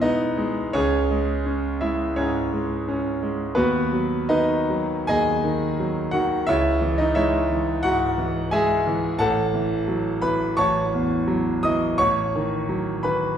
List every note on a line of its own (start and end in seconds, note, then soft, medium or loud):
0.00 0.78 B2 medium
0.00 0.37 G#3 medium
0.00 0.03 B3 medium
0.00 0.60 B3 medium
0.00 0.71 D#4 medium
0.00 0.78 E4 medium
0.00 0.78 F#4 medium
0.00 0.78 B4 medium
0.00 0.74 D#5 medium
0.00 0.78 E5 medium
0.00 0.78 F#5 medium
0.37 0.75 G#3 medium
0.73 2.12 C#2 medium
0.73 1.44 C#4 medium
0.73 1.77 G#4 medium
0.73 1.80 C#5 loud
1.11 1.67 G#3 medium
1.46 2.02 C#4 medium
1.81 2.39 G#3 soft
1.81 2.14 E4 medium
1.81 2.16 E5 medium
2.16 2.74 G#2 medium
2.16 2.87 C#4 medium
2.16 3.17 G#4 medium
2.16 3.21 C#5 medium
2.53 3.08 G#3 soft
2.88 3.42 C#4 medium
3.23 3.56 G#3 soft
3.55 5.04 D#2 medium
3.55 4.24 B3 medium
3.55 4.24 F#4 medium
3.55 4.27 B4 medium
3.92 4.52 F#3 soft
4.29 4.93 D#3 medium
4.29 5.05 D#4 medium
4.29 5.05 B4 medium
4.29 5.08 D#5 medium
4.70 5.31 F#3 soft
5.07 6.44 D#2 medium
5.07 6.09 G#4 medium
5.07 6.10 D#5 medium
5.07 6.13 G#5 loud
5.44 5.99 D#3 medium
5.80 6.34 F#3 medium
6.11 6.47 D#3 medium
6.11 6.44 F#4 medium
6.11 6.46 F#5 medium
6.47 7.79 C#2 medium
6.47 6.95 E4 medium
6.47 6.95 C#5 medium
6.47 6.97 E5 loud
6.82 7.35 E3 medium
6.98 7.14 D#4 medium
6.98 7.14 D#5 medium
7.15 7.69 G#3 medium
7.15 7.79 E4 medium
7.15 7.79 C#5 medium
7.15 7.82 E5 medium
7.51 8.04 E3 soft
7.83 8.38 G#2 medium
7.83 8.48 F#4 medium
7.83 8.52 F#5 loud
8.18 8.72 E3 medium
8.51 9.06 G#3 medium
8.51 9.15 G#4 medium
8.51 9.15 E5 medium
8.51 9.18 G#5 loud
8.87 9.19 E3 medium
9.19 10.54 A1 medium
9.19 10.19 A4 medium
9.19 10.18 F#5 medium
9.19 10.22 A5 loud
9.54 10.09 E3 medium
9.88 10.43 F#3 medium
10.22 10.79 E3 medium
10.22 10.55 B4 medium
10.22 10.57 B5 medium
10.57 11.95 A1 medium
10.57 11.60 C#5 medium
10.57 11.59 A5 medium
10.57 11.63 C#6 loud
10.93 11.50 E2 medium
11.28 11.84 F#3 medium
11.63 11.99 E3 medium
11.63 11.97 D#5 medium
11.63 11.98 D#6 loud
11.98 13.36 A1 medium
11.98 12.99 C#5 medium
11.98 13.03 C#6 loud
12.36 12.90 D#3 medium
12.69 13.26 F#3 medium
13.03 13.38 D#3 soft
13.03 13.38 B4 medium
13.03 13.38 B5 medium